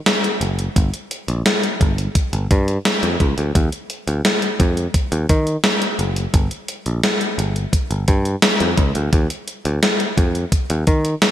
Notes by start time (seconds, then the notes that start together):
0.06 snare, closed hi-hat
0.24 closed hi-hat
0.41 F#1, closed hi-hat
0.59 closed hi-hat
0.76 G1, kick, closed hi-hat
0.94 closed hi-hat
1.11 closed hi-hat
1.28 A#1, closed hi-hat
1.46 snare, closed hi-hat
1.63 closed hi-hat
1.81 G1, kick, closed hi-hat
1.98 closed hi-hat
2.15 kick, closed hi-hat
2.33 G1, closed hi-hat
2.51 G2, kick, closed hi-hat
2.68 closed hi-hat
2.85 snare, closed hi-hat
3.03 F2, closed hi-hat
3.20 C#2, kick, closed hi-hat
3.38 D2, closed hi-hat
3.55 D#2, kick, closed hi-hat
3.72 closed hi-hat
3.90 closed hi-hat
4.08 D2, closed hi-hat
4.25 snare, closed hi-hat
4.42 closed hi-hat
4.60 F2, kick, closed hi-hat
4.77 closed hi-hat
4.94 kick, closed hi-hat
5.12 D#2, closed hi-hat
5.29 D#3, kick, closed hi-hat
5.47 closed hi-hat
5.64 snare, closed hi-hat
5.82 closed hi-hat
5.99 F#1, closed hi-hat
6.16 closed hi-hat
6.34 G1, kick, closed hi-hat
6.51 closed hi-hat
6.68 closed hi-hat
6.86 A#1, closed hi-hat
7.03 snare, closed hi-hat
7.21 closed hi-hat
7.38 G1, closed hi-hat
7.56 closed hi-hat
7.73 kick, closed hi-hat
7.91 G1, closed hi-hat
8.08 G2, kick, closed hi-hat
8.25 closed hi-hat
8.42 snare, closed hi-hat
8.60 F2, closed hi-hat
8.77 C#2, kick, closed hi-hat
8.95 D2, closed hi-hat
9.13 D#2, kick, closed hi-hat
9.30 closed hi-hat
9.48 closed hi-hat
9.65 D2, closed hi-hat
9.83 snare, closed hi-hat
10.00 closed hi-hat
10.18 F2, kick, closed hi-hat
10.35 closed hi-hat
10.52 kick, closed hi-hat
10.70 D#2, closed hi-hat
10.87 D#3, kick, closed hi-hat
11.05 closed hi-hat
11.22 snare, closed hi-hat